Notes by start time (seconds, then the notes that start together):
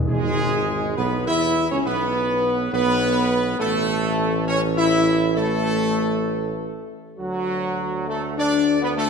0.07 G#1 E2 G#3 G#4
0.97 B1 B3 B4
1.27 E2 E4 E5
1.71 C#2 C#4 C#5
1.86 B1 B3 B4
2.73 B1 B3 B4
3.59 A1 A3 A4
4.47 C#4 C#5
4.77 E4 E5
5.37 A3 A4
7.19 D2 F#3 F#4
8.08 A3 A4
8.38 D4 D5
8.82 B3 B4
8.96 A3 A4